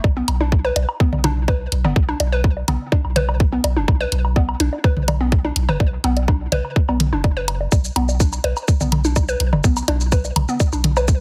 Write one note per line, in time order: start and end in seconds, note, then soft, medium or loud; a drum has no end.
0.04 0.21 B1 loud
0.04 kick loud
0.04 high bongo medium
0.04 low woodblock soft
0.17 0.23 B3 medium
0.28 0.71 B1 medium
0.28 closed hi-hat medium
0.28 low woodblock medium
0.41 0.43 D4 medium
0.41 high bongo soft
0.52 kick loud
0.65 0.67 B4 loud
0.65 low woodblock soft
0.76 0.85 B1 loud
0.76 closed hi-hat medium
0.76 high bongo medium
0.89 low woodblock medium
1.00 1.07 B3 medium
1.00 kick loud
1.13 1.67 B1 medium
1.13 mid tom medium
1.13 high bongo soft
1.24 1.27 D4 medium
1.24 closed hi-hat medium
1.24 mid tom medium
1.24 low woodblock soft
1.48 1.51 B4 loud
1.48 kick loud
1.48 closed hi-hat soft
1.48 high bongo medium
1.48 low woodblock medium
1.72 1.86 B1 medium
1.72 closed hi-hat medium
1.85 1.93 F#1 loud
1.85 1.91 B3 medium
1.85 mid tom medium
1.85 high bongo soft
1.85 low woodblock soft
1.96 2.13 B1 loud
1.96 kick loud
2.09 2.11 D4 medium
2.09 low woodblock medium
2.20 2.63 B1 medium
2.20 closed hi-hat medium
2.20 high bongo medium
2.32 2.35 B4 medium
2.44 kick loud
2.44 low woodblock soft
2.57 high bongo soft
2.68 2.77 B1 loud
2.68 2.75 B3 medium
2.68 closed hi-hat medium
2.68 mid tom medium
2.68 low woodblock medium
2.92 2.95 D4 medium
2.92 kick loud
2.92 high bongo medium
3.04 3.59 B1 medium
3.04 low woodblock soft
3.16 3.19 B4 medium
3.16 closed hi-hat medium
3.16 mid tom medium
3.29 high bongo soft
3.29 low woodblock medium
3.40 kick loud
3.40 closed hi-hat soft
3.52 3.59 B3 medium
3.64 3.78 B1 medium
3.64 closed hi-hat medium
3.64 high bongo medium
3.64 low woodblock soft
3.76 3.85 F#1 loud
3.76 3.79 D4 medium
3.88 4.05 B1 loud
3.88 kick loud
3.88 low woodblock medium
4.00 4.03 B4 loud
4.00 high bongo soft
4.12 4.55 B1 medium
4.12 closed hi-hat medium
4.25 low woodblock soft
4.36 4.43 B3 medium
4.36 kick loud
4.36 high bongo medium
4.49 low woodblock medium
4.60 4.69 B1 medium
4.60 4.63 D4 medium
4.60 closed hi-hat medium
4.73 high bongo soft
4.84 4.87 B4 medium
4.84 kick loud
4.84 low woodblock soft
4.97 5.51 B1 medium
4.97 mid tom medium
5.08 closed hi-hat medium
5.08 mid tom medium
5.08 high bongo medium
5.08 low woodblock medium
5.21 5.27 B3 medium
5.32 kick loud
5.32 closed hi-hat soft
5.45 5.47 D4 medium
5.45 high bongo soft
5.45 low woodblock soft
5.56 5.70 B1 medium
5.56 closed hi-hat medium
5.69 5.77 F#1 loud
5.69 5.71 B4 loud
5.69 mid tom medium
5.69 low woodblock medium
5.80 5.97 B1 loud
5.80 kick loud
5.80 high bongo medium
6.04 6.47 B1 medium
6.04 6.11 B3 medium
6.04 closed hi-hat medium
6.04 low woodblock soft
6.17 closed hi-hat soft
6.17 high bongo soft
6.28 6.31 D4 medium
6.28 kick loud
6.28 low woodblock medium
6.52 6.61 B1 medium
6.52 6.55 B4 loud
6.52 closed hi-hat medium
6.52 mid tom medium
6.52 high bongo medium
6.65 low woodblock soft
6.76 kick loud
6.88 7.12 B1 medium
6.88 6.95 B3 medium
6.88 high bongo soft
6.88 low woodblock medium
7.00 closed hi-hat medium
7.00 mid tom medium
7.13 7.67 F#1 medium
7.13 7.15 D4 medium
7.24 kick loud
7.24 closed hi-hat soft
7.24 high bongo medium
7.24 low woodblock soft
7.37 7.39 B4 loud
7.48 closed hi-hat medium
7.48 low woodblock medium
7.61 high bongo soft
7.72 7.89 B1 medium
7.72 kick loud
7.72 high bongo medium
7.72 low woodblock soft
7.72 shaker medium
7.85 shaker soft
7.96 8.39 B1 medium
7.96 8.03 B3 medium
7.96 closed hi-hat medium
7.96 low woodblock medium
8.09 high bongo soft
8.09 shaker soft
8.20 8.23 D4 medium
8.20 kick loud
8.20 shaker medium
8.33 low woodblock soft
8.33 shaker soft
8.44 8.53 B1 medium
8.44 8.47 B4 loud
8.44 closed hi-hat medium
8.44 high bongo medium
8.57 low woodblock medium
8.57 shaker soft
8.68 kick loud
8.68 shaker medium
8.81 9.35 B1 medium
8.81 8.87 B3 medium
8.81 mid tom medium
8.81 high bongo soft
8.81 shaker soft
8.92 closed hi-hat medium
8.92 mid tom medium
8.92 low woodblock soft
9.05 9.07 D4 medium
9.05 shaker soft
9.16 kick loud
9.16 closed hi-hat soft
9.16 high bongo medium
9.16 low woodblock medium
9.16 shaker medium
9.29 9.31 B4 loud
9.29 shaker soft
9.40 9.54 B1 loud
9.40 closed hi-hat medium
9.53 9.61 F#1 medium
9.53 mid tom loud
9.53 high bongo soft
9.53 low woodblock soft
9.64 9.81 B1 loud
9.64 9.71 B3 medium
9.64 kick loud
9.64 shaker medium
9.77 low woodblock medium
9.77 shaker soft
9.88 10.31 B1 medium
9.88 9.91 D4 medium
9.88 closed hi-hat medium
9.88 high bongo medium
10.01 shaker soft
10.12 10.15 B4 loud
10.12 kick loud
10.12 low woodblock soft
10.12 shaker medium
10.25 high bongo soft
10.25 shaker soft
10.36 10.45 B1 loud
10.36 closed hi-hat medium
10.36 mid tom medium
10.36 low woodblock medium
10.49 10.55 B3 medium
10.49 shaker soft
10.60 kick loud
10.60 high bongo medium
10.60 shaker medium
10.73 11.21 B1 medium
10.73 10.75 D4 medium
10.73 low woodblock soft
10.73 shaker soft
10.84 closed hi-hat medium
10.84 mid tom medium
10.97 10.99 B4 loud
10.97 high bongo soft
10.97 low woodblock medium
10.97 shaker soft
11.08 kick loud
11.08 closed hi-hat soft
11.08 shaker medium